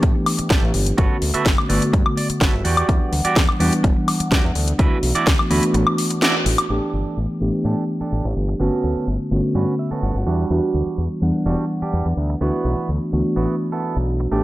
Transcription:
Already playing: E3 A3 B3 D4 G4
0.02 A2, muted clean electric guitar stroke, kick, closed hi-hat
0.15 muted clean electric guitar stroke
0.26 open hi-hat, high woodblock
0.38 muted clean electric guitar stroke, muted fingered electric bass stroke, closed hi-hat
0.50 A1 G4 A4 E5, kick, snare, closed hi-hat
0.62 A1
0.74 G1, muted clean electric guitar stroke, open hi-hat
0.86 closed hi-hat
0.97 G1 D3 A3 F#4 A4 B4 C#5, kick, closed hi-hat
1.22 D2, open hi-hat
1.34 F#4 A4 B4 E5, muted fingered electric bass stroke, closed hi-hat
1.46 G1, kick, snare, closed hi-hat
1.58 high woodblock
1.69 G1 D3 A3 B3 F#4 A4 B4 D5, open hi-hat
1.82 closed hi-hat
1.93 G2, muted clean electric guitar stroke, kick, closed hi-hat
2.06 muted clean electric guitar stroke, high woodblock
2.17 D5, open hi-hat
2.30 muted fingered electric bass stroke, muted clean electric guitar stroke, closed hi-hat
2.41 G1 F#4 A4 B4 C#5 E5, kick, snare, closed hi-hat
2.53 G1
2.64 E2 F#4 G4 D5 F#5, open hi-hat
2.77 closed hi-hat, high woodblock
2.88 E2 E3 G3 B3 D4 F#5, kick, closed hi-hat
3.12 D2, open hi-hat
3.25 F#4 G4 D5, muted fingered electric bass stroke, closed hi-hat
3.36 E2, kick, snare, closed hi-hat
3.49 high woodblock
3.59 E2 E3 G3 B3 D4 F#4 G4 D5 F#5, open hi-hat
3.73 closed hi-hat
3.84 E1, muted clean electric guitar stroke, kick, closed hi-hat
3.96 muted clean electric guitar stroke
4.08 open hi-hat, high woodblock
4.20 muted clean electric guitar stroke, muted fingered electric bass stroke, closed hi-hat
4.31 E2 F#4 G4 D5, kick, snare, closed hi-hat
4.44 E2
4.55 D2, muted clean electric guitar stroke, open hi-hat
4.68 closed hi-hat
4.79 D2 E3 A3 B3 E4 F#4 B4, kick, closed hi-hat
5.03 B1, open hi-hat
5.15 E4 F#4 D5, closed hi-hat
5.27 D2, kick, snare, closed hi-hat
5.39 high woodblock
5.50 D2 E3 A3 B3 D4 E4 F#4 B4, open hi-hat
5.63 closed hi-hat
5.74 A1, muted clean electric guitar stroke, closed hi-hat
5.87 muted clean electric guitar stroke, high woodblock
5.98 open hi-hat
6.10 muted clean electric guitar stroke, closed hi-hat
6.22 E4 F#4 D5, snare, closed hi-hat
6.46 A1, muted clean electric guitar stroke, open hi-hat
6.58 closed hi-hat, high woodblock
6.69 A1 E3 A3 B3 D4 G4 A4
6.93 G1
7.17 A1
7.40 A1 E3 A3 B3 D4 G4
7.65 A2 D4 G4 A4
8.01 D4 G4 A4, muted fingered electric bass stroke
8.12 A1
8.25 A1
8.36 G1
8.49 muted clean electric guitar stroke
8.59 G1 D3 A3 B3 C#4 F#4 A4
8.84 D2
8.96 muted fingered electric bass stroke
9.07 G1
9.31 G1 D3 A3 B3 C#4 F#4
9.55 G2 B3 C#4 F#4 B4
9.79 E5
9.91 B3 C#4 F#4 A4, muted fingered electric bass stroke
10.03 G1 F#5
10.15 G1
10.27 E2 G3 D4 F#4
10.50 E2 E3 G3 B3 D4 F#4
10.74 D2
10.98 E2
11.21 E2 E3 G3 B3 D4 F#5
11.46 E1 G3 D4 F#4
11.82 G3 D4 G4, muted fingered electric bass stroke
11.93 E2
12.06 E2
12.17 D2
12.30 muted clean electric guitar stroke
12.40 D2 E3 A3 B3 D4 E4 F#4
12.65 B1
12.89 D2
13.12 D2 E3 A3 B3 D4 F#4
13.36 A1 B3 E4 F#4
13.72 B3 E4 A4
13.96 B1
14.20 muted clean electric guitar stroke
14.31 A1 E3 A3 B3 D4 G4

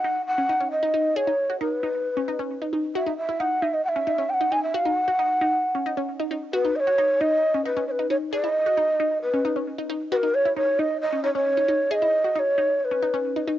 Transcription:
Already playing: F#5
0.04 D#4
0.27 F#5
0.38 C#4
0.49 D#4
0.60 C#4
0.71 D#5
0.83 D#4
0.94 D#4
1.16 G#4 C#5
1.27 D#4
1.50 F#4
1.61 D#4 A#4
1.74 B4
1.83 D#4
2.17 C#4
2.28 D#4
2.39 C#4
2.62 D#4
2.73 D#4
2.95 F#4 E5
3.06 D#4
3.18 E5
3.29 E4
3.40 D#4 F#5
3.62 D#4 E5
3.74 D#5
3.85 E5 F#5
3.96 C#4
4.07 D#4
4.18 C#4
4.30 G5
4.34 F#5
4.41 D#4
4.52 D#4 G#5
4.63 E5
4.74 F#4 F5
4.86 D#4
4.90 F#5
5.08 F#4
5.19 D#4
5.41 D#4
5.75 C#4
5.86 D#4
5.97 C#4
6.20 D#4
6.31 D#4
6.53 F#4 B4
6.65 D#4
6.76 C#5 D#5
6.87 F#4
6.98 D#4
7.21 D#4 D#5
7.54 C#4
7.65 D#4 B4
7.77 C#4
7.88 B4 C#5
7.99 D#4
8.10 D#4 C#5
8.33 G#4 D5
8.44 E4
8.48 D#5
8.66 F#4
8.77 D#4
9.00 D#4
9.22 B4
9.33 C#4
9.45 D#4
9.56 C#4
9.78 D#4
9.89 D#4
10.12 F#4 B4
10.16 A#4
10.23 D#4
10.34 C#5
10.45 E4
10.56 D#4 C#5
10.79 D#4 D#5
11.01 D#5
11.12 C#4
11.24 D#4 C#5
11.35 C#4 C#5
11.57 D#4
11.68 D#4
11.91 G#4 D#5 E5
12.02 E4
12.24 F#4
12.36 D#4 C#5 D#5
12.58 D#4
12.80 C#5
12.85 B4
12.92 C#4
13.03 D#4
13.14 C#4
13.36 D#4
13.48 D#4

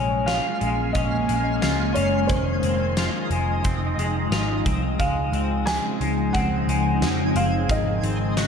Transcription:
Already playing: A#1 G#3 A#3 C#4 C#5 F5
0.17 G#5
0.26 F4 F5, snare, closed hi-hat, tambourine
0.61 A#1 G#3, closed hi-hat
0.93 A#1 C#4 D#5, kick, closed hi-hat
1.28 A#1 G#3 G#5, closed hi-hat
1.52 C6
1.62 C#2 F4, snare, closed hi-hat, tambourine
1.94 F#1 C#4 C#5, closed hi-hat
2.27 F1 D#3 F3 D#4 C5, kick, closed hi-hat
2.63 F1 C4 D#5, closed hi-hat
2.97 F4, snare, closed hi-hat, tambourine
3.30 F1 G#3, closed hi-hat
3.64 F1 C4, kick, closed hi-hat
3.98 F1 G#3, closed hi-hat
4.31 G#1 F4, snare, closed hi-hat, tambourine
4.66 C2 C4, kick, closed hi-hat
4.99 C#2 C#3 F3 G#3 C4 D#4 F5, kick, closed hi-hat
5.32 C#2 C4, closed hi-hat
5.66 G#5, snare, closed hi-hat, tambourine
6.00 C#2 G#3 G#5, closed hi-hat
6.33 C#2 C4 F#5, kick, closed hi-hat
6.68 C#2 G#3, closed hi-hat
7.01 F2, snare, closed hi-hat, tambourine
7.35 F#1 C4 F5, closed hi-hat
7.69 G#1 D#3 F#3 D#5 C6, kick, closed hi-hat
8.02 G#1 C4 D#6, closed hi-hat
8.37 F#4, snare, closed hi-hat, tambourine

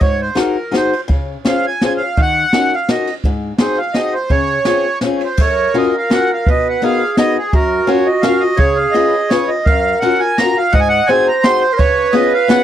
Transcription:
0.01 G#2 C#5, kick, ride
0.22 C5
0.35 D#4 F#4 G#4 A#4 C5, snare, ride
0.71 D#4 F#4 G#4 C5, snare, ride
0.77 C5
0.93 ride
1.08 C#3, kick, ride
1.45 C#4 F4 G#4 C5 F5, snare, ride
1.67 G#5
1.81 C#4 F4 G#4 C5 G#5, snare, ride
1.97 F5
2.17 D#3, kick, ride
2.22 F#5
2.53 C#4 D#4 F#4 A#4, snare, ride
2.74 F5
2.88 C#4 D#4 F#4 A#4 D#5, snare, ride
3.07 ride
3.23 G#2, kick, ride
3.58 C4 D#4 F#4 G#4 C5, snare, ride
3.78 F5
3.93 C4 D#4 F#4 G#4 D#5, snare, ride
4.14 C5
4.29 C#3 C#5, kick, ride
4.65 C4 C#4 F4 G#4, snare, ride
5.01 C4 C#4 F4 G#4, snare, ride
5.17 C#5, ride
5.25 C5
5.37 F#2 A#4 C#5, kick, crash
5.74 C#4 F4 F#4 A#4 D#5, ride
5.98 F5
6.10 C#4 F4 F#4 A#4 F#5, snare, ride
6.33 F5
6.46 B2 B4, kick, ride
6.50 D#5
6.69 F#5
6.82 B3 D#4 F#4 G#4 A#4 F5, ride
7.17 B3 D#4 F#4 A#4 D#5, snare, ride
7.38 G#4
7.53 F#2 F#4 A#4, kick, ride
7.87 C#4 F4 F#4 A#4 C#5, ride
8.06 D#5
8.22 C#4 F4 F#4 A#4 F5, snare, ride
8.40 D#5
8.57 C#3 G#4 C#5, kick, ride
8.76 F5
8.91 C#4 F4 G#4 B4 D#5, ride
9.29 C#4 F4 G#4 B4 C#5, snare, ride
9.48 D#5
9.65 F#2 A#4 F5, kick, ride
10.00 C#4 F4 F#4 A#4 F#5, ride
10.19 G#5
10.38 C#4 F4 F#4 A#4 A#5, snare, ride
10.57 F5
10.72 G#2 D#5 F#5, kick, ride
10.80 G#5
10.89 F#5
11.07 C4 D#4 F#4 G#4 C5 G#5, ride
11.28 A#5
11.43 C4 D#4 F#4 G#4 C6, snare, ride
11.61 C5
11.73 A#4
11.78 C#3 B4 C#5, kick, ride
12.12 B3 C#4 F4 G#4 D#5, ride
12.34 F5
12.48 B3 C#4 F4 G#4 F#5, snare, ride

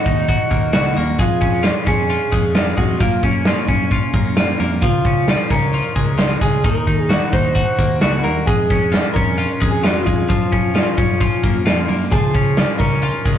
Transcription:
Already playing: D#3 D#4 F#4
0.05 D#2 D#4, kick, closed hi-hat
0.28 F#4, kick, closed hi-hat
0.51 D#2 A#3, kick, closed hi-hat
0.73 C#2 F#4, snare, closed hi-hat
0.96 D#2 A#3, closed hi-hat
1.19 F2 G#3 F4, kick, closed hi-hat
1.41 F2 C#4, kick, closed hi-hat
1.63 F4, snare, closed hi-hat
1.86 F2 C#4 G#4, kick, closed hi-hat
2.10 F4, closed hi-hat
2.32 F2 G#3, kick, closed hi-hat
2.55 F4, snare, closed hi-hat
2.77 F2 G#3 F#4, kick, closed hi-hat
3.00 F#2 A#3 F4, kick, closed hi-hat
3.23 F#2 C#4, kick, closed hi-hat
3.45 F4, snare, closed hi-hat
3.67 F#2 C#4, kick, closed hi-hat
3.91 F4, kick, closed hi-hat
4.13 F#2 A#3, kick, closed hi-hat
4.37 F4, snare, closed hi-hat
4.60 F2 A#3, closed hi-hat
4.82 C#2 F3 F4, kick, closed hi-hat
5.05 C#2 C#4, kick, closed hi-hat
5.28 F4, snare, closed hi-hat
5.50 C#2 C#4 A#4, kick, closed hi-hat
5.73 F4, closed hi-hat
5.96 C#2 G#3, kick, closed hi-hat
6.18 F4, snare, closed hi-hat
6.41 C#2 G#3 G#4, kick, closed hi-hat
6.64 D#2 D#3 A#4, kick, closed hi-hat
6.87 D#2 D#4, kick, closed hi-hat
7.09 F#4, snare, closed hi-hat
7.32 D#2 D#4 C5, kick, closed hi-hat
7.55 F#4, kick, closed hi-hat
7.79 D#2 A#3, kick, closed hi-hat
8.01 C#2 F#4, snare, closed hi-hat
8.23 D#2 A#3 A#4, closed hi-hat
8.46 F2 G#3 G#4, kick, closed hi-hat
8.70 F2 C#4, kick, closed hi-hat
8.92 F4, snare, closed hi-hat
9.14 F2 C#4 A#4, kick, closed hi-hat
9.38 F4, closed hi-hat
9.60 F2 G#3, kick, closed hi-hat
9.71 G#4
9.82 F4 F#4, snare, closed hi-hat
10.03 G#3 F4, kick
10.07 F2, closed hi-hat
10.29 F#2 F3, kick, closed hi-hat
10.52 F#2 C#4, kick, closed hi-hat
10.75 F4, snare, closed hi-hat
10.97 F#2 C#4, kick, closed hi-hat
11.20 F4, kick, closed hi-hat
11.43 F#2 A#3, kick, closed hi-hat
11.66 F2 F4, snare, closed hi-hat
11.89 F#2 A#3, open hi-hat
12.11 C#2 F3 G#4, kick, closed hi-hat
12.34 C#2 C#4, kick, closed hi-hat
12.57 F4, snare, closed hi-hat
12.79 C#2 C#4 A#4, kick, closed hi-hat
13.02 F4, closed hi-hat
13.26 C#2 G#3, kick, closed hi-hat

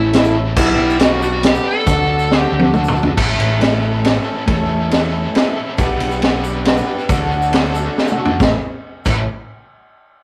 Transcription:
Already playing: A1 A2 A3 C#4 E4 A4
0.13 A3 C#4 E4 A4, snare, closed hi-hat
0.24 shaker
0.35 A2 A3 C#4 E4 A4
0.55 B1 G3 B3 D4 E4 G4 B4, kick, crash, shaker
0.78 B1 D4 G4 B4
0.90 shaker
0.99 B3 D4 F#4 G4 B4, snare, closed hi-hat
1.22 B3 D4 F#4 G4 B4, shaker
1.43 B3 D4 G4 B4, snare, closed hi-hat
1.48 G4
1.55 shaker
1.64 B3 D4 G4 A4 B4
1.84 D2 D3 F#3 A3 D4 F#4, kick, closed hi-hat, shaker
1.89 A4
2.08 D4 F#4 A4
2.19 shaker
2.29 D3 D4 F#4 A4, snare
2.40 G4
2.51 D2 D3 D4 F#4 A4
2.59 high tom
2.73 D3 D4 F#4 A4, mid tom, shaker
2.84 shaker
2.88 mid tom
2.94 D3 D4 F#4 A4, shaker
3.03 floor tom
3.15 A1 A2 E3 A3 C#4 E4 A4, kick, crash
3.38 A1 C#4 E4 A4, ride
3.60 A2 A3 C#4 E4 A4, snare, ride
3.82 C#4 E4 A4
4.03 A3 C#4 E4 A4, snare, ride
4.24 C#4 E4 A4
4.46 E2 A2 A3 C#4 E4 A4, kick, ride
4.69 C#4 E4 A4
4.90 A2 A3 C#4 E4 A4, snare, ride
5.13 C#4 E4 A4
5.34 A3 C#4 E4 A4, snare, ride
5.56 C#4 E4 A4
5.77 B1 G3 B3 D4 G4 B4, kick, ride, shaker
6.00 B1 D4 G4 B4, ride
6.11 shaker
6.21 B3 D4 G4 B4, snare, ride
6.44 D4 G4 B4, shaker
6.65 B3 D4 G4 B4, snare, ride, shaker
6.77 shaker
6.86 D4 G4 B4
6.99 shaker
7.07 D2 D3 F#3 A3 D4 F#4 A4, kick, ride, shaker
7.31 D4 F#4 A4, shaker
7.42 shaker
7.52 D3 D4 F#4 A4, snare, ride
7.64 shaker
7.74 D4 F#4 A4, shaker
7.96 D3 D4 F#4 A4, snare
8.07 shaker
8.12 mid tom
8.18 D4 F#4 A4
8.25 floor tom
8.39 A1 A2 E3 A3 C#4 E4 A4, kick, snare, shaker
9.05 A1 A2 E3 A3 C#4 E4 A4, kick, crash, shaker

